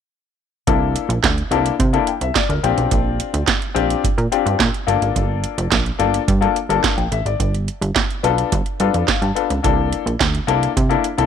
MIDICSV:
0, 0, Header, 1, 4, 480
1, 0, Start_track
1, 0, Tempo, 560748
1, 574, Time_signature, 4, 2, 24, 8
1, 9639, End_track
2, 0, Start_track
2, 0, Title_t, "Grand piano"
2, 0, Program_c, 0, 0
2, 575, Note_on_c, 0, 58, 74
2, 577, Note_on_c, 0, 62, 65
2, 580, Note_on_c, 0, 64, 69
2, 581, Note_on_c, 0, 69, 88
2, 936, Note_off_c, 0, 58, 0
2, 937, Note_off_c, 0, 62, 0
2, 939, Note_off_c, 0, 64, 0
2, 939, Note_off_c, 0, 69, 0
2, 1293, Note_on_c, 0, 58, 86
2, 1296, Note_on_c, 0, 62, 79
2, 1300, Note_on_c, 0, 64, 81
2, 1300, Note_on_c, 0, 69, 93
2, 1474, Note_off_c, 0, 58, 0
2, 1476, Note_off_c, 0, 62, 0
2, 1478, Note_off_c, 0, 64, 0
2, 1478, Note_off_c, 0, 69, 0
2, 1653, Note_on_c, 0, 58, 83
2, 1654, Note_on_c, 0, 62, 73
2, 1659, Note_on_c, 0, 64, 68
2, 1659, Note_on_c, 0, 69, 89
2, 1774, Note_off_c, 0, 58, 0
2, 1775, Note_off_c, 0, 62, 0
2, 1776, Note_off_c, 0, 69, 0
2, 1777, Note_off_c, 0, 64, 0
2, 1780, Note_on_c, 0, 79, 59
2, 1891, Note_off_c, 0, 79, 0
2, 1901, Note_on_c, 0, 76, 63
2, 2012, Note_off_c, 0, 76, 0
2, 2016, Note_on_c, 0, 74, 76
2, 2129, Note_off_c, 0, 74, 0
2, 2139, Note_on_c, 0, 70, 58
2, 2255, Note_on_c, 0, 60, 88
2, 2256, Note_on_c, 0, 62, 73
2, 2259, Note_on_c, 0, 65, 70
2, 2261, Note_on_c, 0, 67, 86
2, 2364, Note_off_c, 0, 70, 0
2, 3022, Note_off_c, 0, 60, 0
2, 3023, Note_off_c, 0, 62, 0
2, 3024, Note_off_c, 0, 65, 0
2, 3025, Note_off_c, 0, 67, 0
2, 3206, Note_on_c, 0, 60, 91
2, 3206, Note_on_c, 0, 62, 82
2, 3209, Note_on_c, 0, 65, 83
2, 3211, Note_on_c, 0, 67, 98
2, 3451, Note_off_c, 0, 60, 0
2, 3451, Note_off_c, 0, 62, 0
2, 3453, Note_off_c, 0, 65, 0
2, 3453, Note_off_c, 0, 67, 0
2, 3696, Note_on_c, 0, 60, 78
2, 3696, Note_on_c, 0, 62, 78
2, 3699, Note_on_c, 0, 65, 73
2, 3701, Note_on_c, 0, 67, 86
2, 3936, Note_off_c, 0, 60, 0
2, 3936, Note_off_c, 0, 62, 0
2, 3938, Note_off_c, 0, 65, 0
2, 3938, Note_off_c, 0, 67, 0
2, 4167, Note_on_c, 0, 58, 82
2, 4169, Note_on_c, 0, 62, 72
2, 4169, Note_on_c, 0, 65, 72
2, 4173, Note_on_c, 0, 69, 88
2, 4938, Note_off_c, 0, 58, 0
2, 4939, Note_off_c, 0, 62, 0
2, 4939, Note_off_c, 0, 65, 0
2, 4941, Note_off_c, 0, 69, 0
2, 5124, Note_on_c, 0, 58, 86
2, 5127, Note_on_c, 0, 62, 84
2, 5129, Note_on_c, 0, 65, 76
2, 5131, Note_on_c, 0, 69, 97
2, 5310, Note_off_c, 0, 58, 0
2, 5311, Note_off_c, 0, 62, 0
2, 5312, Note_off_c, 0, 65, 0
2, 5313, Note_off_c, 0, 69, 0
2, 5485, Note_on_c, 0, 58, 77
2, 5489, Note_on_c, 0, 62, 72
2, 5489, Note_on_c, 0, 65, 78
2, 5492, Note_on_c, 0, 69, 88
2, 5610, Note_off_c, 0, 58, 0
2, 5612, Note_off_c, 0, 62, 0
2, 5612, Note_off_c, 0, 65, 0
2, 5614, Note_off_c, 0, 69, 0
2, 5730, Note_on_c, 0, 58, 78
2, 5731, Note_on_c, 0, 62, 68
2, 5734, Note_on_c, 0, 65, 64
2, 5735, Note_on_c, 0, 69, 93
2, 5913, Note_off_c, 0, 58, 0
2, 5913, Note_off_c, 0, 62, 0
2, 5915, Note_off_c, 0, 65, 0
2, 5915, Note_off_c, 0, 69, 0
2, 5969, Note_on_c, 0, 79, 72
2, 6085, Note_off_c, 0, 79, 0
2, 6091, Note_on_c, 0, 76, 67
2, 6206, Note_off_c, 0, 76, 0
2, 6212, Note_on_c, 0, 74, 67
2, 6441, Note_off_c, 0, 74, 0
2, 7047, Note_on_c, 0, 59, 97
2, 7050, Note_on_c, 0, 62, 80
2, 7054, Note_on_c, 0, 65, 84
2, 7057, Note_on_c, 0, 69, 97
2, 7291, Note_off_c, 0, 59, 0
2, 7293, Note_off_c, 0, 62, 0
2, 7295, Note_off_c, 0, 65, 0
2, 7296, Note_off_c, 0, 69, 0
2, 7532, Note_on_c, 0, 59, 80
2, 7533, Note_on_c, 0, 62, 79
2, 7537, Note_on_c, 0, 65, 84
2, 7538, Note_on_c, 0, 69, 93
2, 7771, Note_on_c, 0, 77, 74
2, 7774, Note_off_c, 0, 59, 0
2, 7775, Note_off_c, 0, 62, 0
2, 7777, Note_off_c, 0, 65, 0
2, 7777, Note_off_c, 0, 69, 0
2, 7884, Note_off_c, 0, 77, 0
2, 7892, Note_on_c, 0, 81, 67
2, 8006, Note_on_c, 0, 59, 76
2, 8008, Note_on_c, 0, 62, 68
2, 8011, Note_on_c, 0, 65, 75
2, 8012, Note_on_c, 0, 69, 84
2, 8130, Note_off_c, 0, 59, 0
2, 8131, Note_off_c, 0, 62, 0
2, 8133, Note_off_c, 0, 65, 0
2, 8134, Note_off_c, 0, 69, 0
2, 8227, Note_off_c, 0, 81, 0
2, 8243, Note_on_c, 0, 58, 69
2, 8246, Note_on_c, 0, 62, 75
2, 8249, Note_on_c, 0, 64, 68
2, 8251, Note_on_c, 0, 69, 92
2, 8610, Note_off_c, 0, 58, 0
2, 8612, Note_off_c, 0, 62, 0
2, 8613, Note_off_c, 0, 64, 0
2, 8614, Note_off_c, 0, 69, 0
2, 8965, Note_on_c, 0, 58, 89
2, 8969, Note_on_c, 0, 62, 82
2, 8970, Note_on_c, 0, 64, 75
2, 8971, Note_on_c, 0, 69, 96
2, 9150, Note_off_c, 0, 58, 0
2, 9152, Note_off_c, 0, 62, 0
2, 9153, Note_off_c, 0, 64, 0
2, 9153, Note_off_c, 0, 69, 0
2, 9325, Note_on_c, 0, 58, 81
2, 9329, Note_on_c, 0, 62, 78
2, 9329, Note_on_c, 0, 64, 80
2, 9333, Note_on_c, 0, 69, 89
2, 9450, Note_off_c, 0, 58, 0
2, 9452, Note_off_c, 0, 62, 0
2, 9452, Note_off_c, 0, 64, 0
2, 9454, Note_off_c, 0, 69, 0
2, 9567, Note_on_c, 0, 58, 78
2, 9571, Note_on_c, 0, 62, 67
2, 9574, Note_on_c, 0, 64, 73
2, 9575, Note_on_c, 0, 69, 92
2, 9639, Note_off_c, 0, 58, 0
2, 9639, Note_off_c, 0, 62, 0
2, 9639, Note_off_c, 0, 64, 0
2, 9639, Note_off_c, 0, 69, 0
2, 9639, End_track
3, 0, Start_track
3, 0, Title_t, "Analog synth bass"
3, 0, Program_c, 1, 38
3, 577, Note_on_c, 1, 36, 98
3, 824, Note_off_c, 1, 36, 0
3, 931, Note_on_c, 1, 34, 93
3, 1015, Note_off_c, 1, 34, 0
3, 1056, Note_on_c, 1, 38, 97
3, 1221, Note_off_c, 1, 38, 0
3, 1291, Note_on_c, 1, 36, 92
3, 1458, Note_off_c, 1, 36, 0
3, 1536, Note_on_c, 1, 48, 108
3, 1701, Note_off_c, 1, 48, 0
3, 1893, Note_on_c, 1, 36, 84
3, 1976, Note_off_c, 1, 36, 0
3, 2134, Note_on_c, 1, 38, 76
3, 2217, Note_off_c, 1, 38, 0
3, 2257, Note_on_c, 1, 34, 106
3, 2338, Note_off_c, 1, 34, 0
3, 2375, Note_on_c, 1, 35, 80
3, 2458, Note_off_c, 1, 35, 0
3, 2494, Note_on_c, 1, 34, 104
3, 2742, Note_off_c, 1, 34, 0
3, 2856, Note_on_c, 1, 38, 84
3, 2938, Note_off_c, 1, 38, 0
3, 3214, Note_on_c, 1, 34, 98
3, 3379, Note_off_c, 1, 34, 0
3, 3460, Note_on_c, 1, 46, 49
3, 3506, Note_off_c, 1, 46, 0
3, 3576, Note_on_c, 1, 46, 99
3, 3658, Note_off_c, 1, 46, 0
3, 3815, Note_on_c, 1, 43, 87
3, 3898, Note_off_c, 1, 43, 0
3, 3934, Note_on_c, 1, 46, 115
3, 4016, Note_off_c, 1, 46, 0
3, 4172, Note_on_c, 1, 31, 100
3, 4255, Note_off_c, 1, 31, 0
3, 4295, Note_on_c, 1, 32, 83
3, 4377, Note_off_c, 1, 32, 0
3, 4415, Note_on_c, 1, 31, 103
3, 4663, Note_off_c, 1, 31, 0
3, 4775, Note_on_c, 1, 29, 96
3, 4857, Note_off_c, 1, 29, 0
3, 4893, Note_on_c, 1, 34, 100
3, 5059, Note_off_c, 1, 34, 0
3, 5131, Note_on_c, 1, 31, 87
3, 5297, Note_off_c, 1, 31, 0
3, 5374, Note_on_c, 1, 43, 110
3, 5540, Note_off_c, 1, 43, 0
3, 5729, Note_on_c, 1, 31, 85
3, 5813, Note_off_c, 1, 31, 0
3, 5971, Note_on_c, 1, 34, 87
3, 6055, Note_off_c, 1, 34, 0
3, 6092, Note_on_c, 1, 33, 96
3, 6176, Note_off_c, 1, 33, 0
3, 6210, Note_on_c, 1, 32, 81
3, 6294, Note_off_c, 1, 32, 0
3, 6331, Note_on_c, 1, 31, 96
3, 6580, Note_off_c, 1, 31, 0
3, 6689, Note_on_c, 1, 31, 93
3, 6773, Note_off_c, 1, 31, 0
3, 7051, Note_on_c, 1, 35, 93
3, 7217, Note_off_c, 1, 35, 0
3, 7294, Note_on_c, 1, 31, 108
3, 7377, Note_off_c, 1, 31, 0
3, 7533, Note_on_c, 1, 43, 86
3, 7616, Note_off_c, 1, 43, 0
3, 7653, Note_on_c, 1, 41, 85
3, 7736, Note_off_c, 1, 41, 0
3, 7890, Note_on_c, 1, 43, 91
3, 7974, Note_off_c, 1, 43, 0
3, 8134, Note_on_c, 1, 37, 85
3, 8217, Note_off_c, 1, 37, 0
3, 8254, Note_on_c, 1, 36, 103
3, 8502, Note_off_c, 1, 36, 0
3, 8611, Note_on_c, 1, 34, 81
3, 8695, Note_off_c, 1, 34, 0
3, 8734, Note_on_c, 1, 38, 97
3, 8899, Note_off_c, 1, 38, 0
3, 8967, Note_on_c, 1, 36, 87
3, 9135, Note_off_c, 1, 36, 0
3, 9216, Note_on_c, 1, 48, 110
3, 9381, Note_off_c, 1, 48, 0
3, 9571, Note_on_c, 1, 36, 95
3, 9639, Note_off_c, 1, 36, 0
3, 9639, End_track
4, 0, Start_track
4, 0, Title_t, "Drums"
4, 577, Note_on_c, 9, 36, 88
4, 577, Note_on_c, 9, 42, 82
4, 662, Note_off_c, 9, 36, 0
4, 662, Note_off_c, 9, 42, 0
4, 818, Note_on_c, 9, 42, 66
4, 904, Note_off_c, 9, 42, 0
4, 941, Note_on_c, 9, 42, 64
4, 1027, Note_off_c, 9, 42, 0
4, 1056, Note_on_c, 9, 36, 100
4, 1059, Note_on_c, 9, 38, 108
4, 1059, Note_on_c, 9, 42, 77
4, 1061, Note_on_c, 9, 39, 102
4, 1142, Note_off_c, 9, 36, 0
4, 1145, Note_off_c, 9, 38, 0
4, 1145, Note_off_c, 9, 42, 0
4, 1147, Note_off_c, 9, 39, 0
4, 1180, Note_on_c, 9, 42, 35
4, 1266, Note_off_c, 9, 42, 0
4, 1297, Note_on_c, 9, 42, 62
4, 1383, Note_off_c, 9, 42, 0
4, 1418, Note_on_c, 9, 42, 61
4, 1504, Note_off_c, 9, 42, 0
4, 1538, Note_on_c, 9, 36, 104
4, 1539, Note_on_c, 9, 42, 88
4, 1624, Note_off_c, 9, 36, 0
4, 1625, Note_off_c, 9, 42, 0
4, 1657, Note_on_c, 9, 42, 31
4, 1743, Note_off_c, 9, 42, 0
4, 1773, Note_on_c, 9, 42, 57
4, 1858, Note_off_c, 9, 42, 0
4, 1894, Note_on_c, 9, 42, 54
4, 1980, Note_off_c, 9, 42, 0
4, 2015, Note_on_c, 9, 36, 93
4, 2016, Note_on_c, 9, 38, 99
4, 2016, Note_on_c, 9, 42, 90
4, 2017, Note_on_c, 9, 39, 82
4, 2101, Note_off_c, 9, 36, 0
4, 2101, Note_off_c, 9, 38, 0
4, 2102, Note_off_c, 9, 42, 0
4, 2103, Note_off_c, 9, 39, 0
4, 2138, Note_on_c, 9, 42, 37
4, 2224, Note_off_c, 9, 42, 0
4, 2259, Note_on_c, 9, 42, 66
4, 2345, Note_off_c, 9, 42, 0
4, 2377, Note_on_c, 9, 42, 51
4, 2463, Note_off_c, 9, 42, 0
4, 2494, Note_on_c, 9, 42, 82
4, 2495, Note_on_c, 9, 36, 96
4, 2580, Note_off_c, 9, 36, 0
4, 2580, Note_off_c, 9, 42, 0
4, 2738, Note_on_c, 9, 42, 66
4, 2823, Note_off_c, 9, 42, 0
4, 2859, Note_on_c, 9, 42, 61
4, 2944, Note_off_c, 9, 42, 0
4, 2975, Note_on_c, 9, 36, 103
4, 2975, Note_on_c, 9, 38, 114
4, 2975, Note_on_c, 9, 42, 95
4, 2977, Note_on_c, 9, 39, 91
4, 3060, Note_off_c, 9, 36, 0
4, 3061, Note_off_c, 9, 38, 0
4, 3061, Note_off_c, 9, 42, 0
4, 3063, Note_off_c, 9, 39, 0
4, 3099, Note_on_c, 9, 42, 37
4, 3184, Note_off_c, 9, 42, 0
4, 3220, Note_on_c, 9, 42, 65
4, 3306, Note_off_c, 9, 42, 0
4, 3342, Note_on_c, 9, 42, 62
4, 3428, Note_off_c, 9, 42, 0
4, 3459, Note_on_c, 9, 36, 112
4, 3463, Note_on_c, 9, 42, 99
4, 3545, Note_off_c, 9, 36, 0
4, 3549, Note_off_c, 9, 42, 0
4, 3581, Note_on_c, 9, 42, 32
4, 3667, Note_off_c, 9, 42, 0
4, 3700, Note_on_c, 9, 42, 66
4, 3786, Note_off_c, 9, 42, 0
4, 3822, Note_on_c, 9, 42, 48
4, 3908, Note_off_c, 9, 42, 0
4, 3935, Note_on_c, 9, 36, 96
4, 3938, Note_on_c, 9, 38, 109
4, 3939, Note_on_c, 9, 42, 95
4, 3940, Note_on_c, 9, 39, 86
4, 4021, Note_off_c, 9, 36, 0
4, 4024, Note_off_c, 9, 38, 0
4, 4025, Note_off_c, 9, 39, 0
4, 4025, Note_off_c, 9, 42, 0
4, 4061, Note_on_c, 9, 42, 37
4, 4146, Note_off_c, 9, 42, 0
4, 4180, Note_on_c, 9, 42, 66
4, 4266, Note_off_c, 9, 42, 0
4, 4298, Note_on_c, 9, 42, 54
4, 4384, Note_off_c, 9, 42, 0
4, 4415, Note_on_c, 9, 36, 93
4, 4418, Note_on_c, 9, 42, 75
4, 4501, Note_off_c, 9, 36, 0
4, 4503, Note_off_c, 9, 42, 0
4, 4653, Note_on_c, 9, 42, 66
4, 4739, Note_off_c, 9, 42, 0
4, 4778, Note_on_c, 9, 42, 61
4, 4864, Note_off_c, 9, 42, 0
4, 4892, Note_on_c, 9, 36, 99
4, 4893, Note_on_c, 9, 42, 94
4, 4894, Note_on_c, 9, 38, 112
4, 4895, Note_on_c, 9, 39, 92
4, 4978, Note_off_c, 9, 36, 0
4, 4979, Note_off_c, 9, 38, 0
4, 4979, Note_off_c, 9, 42, 0
4, 4981, Note_off_c, 9, 39, 0
4, 5018, Note_on_c, 9, 42, 32
4, 5103, Note_off_c, 9, 42, 0
4, 5132, Note_on_c, 9, 42, 65
4, 5218, Note_off_c, 9, 42, 0
4, 5257, Note_on_c, 9, 42, 57
4, 5342, Note_off_c, 9, 42, 0
4, 5375, Note_on_c, 9, 36, 114
4, 5378, Note_on_c, 9, 42, 98
4, 5461, Note_off_c, 9, 36, 0
4, 5464, Note_off_c, 9, 42, 0
4, 5498, Note_on_c, 9, 42, 29
4, 5584, Note_off_c, 9, 42, 0
4, 5617, Note_on_c, 9, 42, 63
4, 5703, Note_off_c, 9, 42, 0
4, 5737, Note_on_c, 9, 42, 51
4, 5822, Note_off_c, 9, 42, 0
4, 5853, Note_on_c, 9, 36, 113
4, 5855, Note_on_c, 9, 38, 109
4, 5855, Note_on_c, 9, 42, 90
4, 5856, Note_on_c, 9, 39, 75
4, 5938, Note_off_c, 9, 36, 0
4, 5940, Note_off_c, 9, 38, 0
4, 5941, Note_off_c, 9, 42, 0
4, 5942, Note_off_c, 9, 39, 0
4, 5974, Note_on_c, 9, 42, 33
4, 6059, Note_off_c, 9, 42, 0
4, 6094, Note_on_c, 9, 42, 66
4, 6180, Note_off_c, 9, 42, 0
4, 6215, Note_on_c, 9, 42, 53
4, 6301, Note_off_c, 9, 42, 0
4, 6333, Note_on_c, 9, 36, 89
4, 6335, Note_on_c, 9, 42, 84
4, 6418, Note_off_c, 9, 36, 0
4, 6420, Note_off_c, 9, 42, 0
4, 6458, Note_on_c, 9, 42, 35
4, 6544, Note_off_c, 9, 42, 0
4, 6575, Note_on_c, 9, 42, 62
4, 6660, Note_off_c, 9, 42, 0
4, 6696, Note_on_c, 9, 42, 63
4, 6781, Note_off_c, 9, 42, 0
4, 6811, Note_on_c, 9, 36, 105
4, 6812, Note_on_c, 9, 38, 114
4, 6812, Note_on_c, 9, 42, 81
4, 6814, Note_on_c, 9, 39, 99
4, 6897, Note_off_c, 9, 36, 0
4, 6898, Note_off_c, 9, 38, 0
4, 6898, Note_off_c, 9, 42, 0
4, 6899, Note_off_c, 9, 39, 0
4, 6937, Note_on_c, 9, 42, 31
4, 7023, Note_off_c, 9, 42, 0
4, 7054, Note_on_c, 9, 42, 64
4, 7139, Note_off_c, 9, 42, 0
4, 7175, Note_on_c, 9, 42, 58
4, 7261, Note_off_c, 9, 42, 0
4, 7294, Note_on_c, 9, 36, 105
4, 7294, Note_on_c, 9, 42, 92
4, 7380, Note_off_c, 9, 36, 0
4, 7380, Note_off_c, 9, 42, 0
4, 7412, Note_on_c, 9, 42, 33
4, 7498, Note_off_c, 9, 42, 0
4, 7531, Note_on_c, 9, 42, 67
4, 7617, Note_off_c, 9, 42, 0
4, 7655, Note_on_c, 9, 42, 50
4, 7740, Note_off_c, 9, 42, 0
4, 7772, Note_on_c, 9, 36, 98
4, 7773, Note_on_c, 9, 38, 99
4, 7774, Note_on_c, 9, 42, 86
4, 7775, Note_on_c, 9, 39, 74
4, 7858, Note_off_c, 9, 36, 0
4, 7859, Note_off_c, 9, 38, 0
4, 7860, Note_off_c, 9, 39, 0
4, 7860, Note_off_c, 9, 42, 0
4, 7894, Note_on_c, 9, 42, 36
4, 7979, Note_off_c, 9, 42, 0
4, 8016, Note_on_c, 9, 42, 65
4, 8101, Note_off_c, 9, 42, 0
4, 8135, Note_on_c, 9, 42, 51
4, 8221, Note_off_c, 9, 42, 0
4, 8254, Note_on_c, 9, 36, 99
4, 8255, Note_on_c, 9, 42, 81
4, 8340, Note_off_c, 9, 36, 0
4, 8341, Note_off_c, 9, 42, 0
4, 8496, Note_on_c, 9, 42, 59
4, 8582, Note_off_c, 9, 42, 0
4, 8621, Note_on_c, 9, 42, 58
4, 8707, Note_off_c, 9, 42, 0
4, 8734, Note_on_c, 9, 36, 100
4, 8737, Note_on_c, 9, 38, 116
4, 8737, Note_on_c, 9, 42, 87
4, 8738, Note_on_c, 9, 39, 101
4, 8819, Note_off_c, 9, 36, 0
4, 8822, Note_off_c, 9, 38, 0
4, 8822, Note_off_c, 9, 42, 0
4, 8824, Note_off_c, 9, 39, 0
4, 8856, Note_on_c, 9, 42, 36
4, 8942, Note_off_c, 9, 42, 0
4, 8975, Note_on_c, 9, 42, 67
4, 9060, Note_off_c, 9, 42, 0
4, 9099, Note_on_c, 9, 42, 61
4, 9185, Note_off_c, 9, 42, 0
4, 9217, Note_on_c, 9, 36, 108
4, 9219, Note_on_c, 9, 42, 93
4, 9303, Note_off_c, 9, 36, 0
4, 9305, Note_off_c, 9, 42, 0
4, 9336, Note_on_c, 9, 42, 32
4, 9422, Note_off_c, 9, 42, 0
4, 9452, Note_on_c, 9, 42, 65
4, 9538, Note_off_c, 9, 42, 0
4, 9574, Note_on_c, 9, 42, 53
4, 9639, Note_off_c, 9, 42, 0
4, 9639, End_track
0, 0, End_of_file